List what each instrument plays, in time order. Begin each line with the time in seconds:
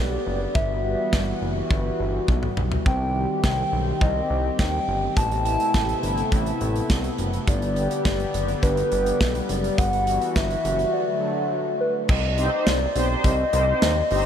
Already playing: analog synth bass B1, analog synth pad D3 G3 B3 G4, soft synth lead D5
0.26 analog synth bass F#1
0.55 analog synth bass G1, analog synth pad E3 F#4, soft synth lead E5, kick
0.84 soft synth lead E5
1.13 analog synth bass G1, kick, snare
1.42 analog synth bass F#1
1.70 analog synth bass G1, kick
1.99 analog synth bass G1
2.28 analog synth bass B1, kick, high tom
2.43 mid tom
2.57 analog synth bass B1, mid tom
2.72 floor tom
2.86 analog synth bass C2, analog synth pad D#3 C4 G4, soft synth lead G5, kick
3.44 analog synth bass C2, soft synth lead G5, kick, snare
3.73 analog synth bass B1
4.01 analog synth bass C2, soft synth lead D#5, kick
4.30 analog synth bass C2
4.59 analog synth bass D#2, soft synth lead G5, kick, snare
4.88 analog synth bass G1
5.17 analog synth bass A1, analog synth pad C3 A3 B3 E4, soft synth lead A5, kick, closed hi-hat
5.31 closed hi-hat
5.45 soft synth lead A5, closed hi-hat
5.60 closed hi-hat
5.74 analog synth bass A1, kick, snare, closed hi-hat
5.89 closed hi-hat
6.03 analog synth bass G1, closed hi-hat
6.17 closed hi-hat
6.32 analog synth bass A1, kick, closed hi-hat
6.46 closed hi-hat
6.61 analog synth bass A1, closed hi-hat
6.76 closed hi-hat
6.90 analog synth bass C2, kick, snare, closed hi-hat
7.04 closed hi-hat
7.18 analog synth bass F#1, closed hi-hat
7.33 closed hi-hat
7.47 analog synth bass G1, analog synth pad D3 G3 G4, soft synth lead D5, kick, closed hi-hat
7.62 closed hi-hat
7.76 closed hi-hat
7.91 closed hi-hat
8.05 analog synth bass G1, soft synth lead D5, kick, snare, closed hi-hat
8.20 closed hi-hat
8.34 analog synth bass F#1, closed hi-hat
8.48 closed hi-hat
8.63 analog synth bass G1, soft synth lead B4, kick, closed hi-hat
8.77 closed hi-hat
8.92 analog synth bass G1, closed hi-hat
9.06 closed hi-hat
9.21 analog synth bass B1, kick, snare, closed hi-hat
9.35 closed hi-hat
9.49 analog synth bass F#1, soft synth lead D5, closed hi-hat
9.64 closed hi-hat
9.78 analog synth bass G1, analog synth pad E3 F#4, soft synth lead F#5, kick, closed hi-hat
9.93 closed hi-hat
10.07 closed hi-hat
10.21 closed hi-hat
10.36 analog synth bass G1, soft synth lead E5, kick, snare, closed hi-hat
10.50 closed hi-hat
10.65 analog synth bass F#1, closed hi-hat
10.79 closed hi-hat
10.94 analog synth pad D3 F#3 A3, soft synth lead D5
11.80 soft synth lead B4
12.09 analog synth bass C2, soft synth lead D#5, kick, crash
12.38 analog polysynth C4 D#4 G4 C5, closed hi-hat
12.52 analog polysynth C4 D#4 G4 C5
12.67 analog synth bass C2, soft synth lead D5, snare, closed hi-hat
12.96 analog synth bass B1, analog polysynth C4 D#4 G4 C5, closed hi-hat
13.10 analog polysynth C4 D#4 G4 C5
13.24 analog synth bass C2, soft synth lead D#5, kick, closed hi-hat
13.53 analog synth bass C2, analog polysynth C4 D#4 G4 C5, closed hi-hat
13.68 analog polysynth C4 D#4 G4 C5
13.82 analog synth bass D#2, soft synth lead D#5, snare, closed hi-hat
14.11 analog synth bass G1, analog polysynth C4 D#4 G4 C5, soft synth lead D#5, open hi-hat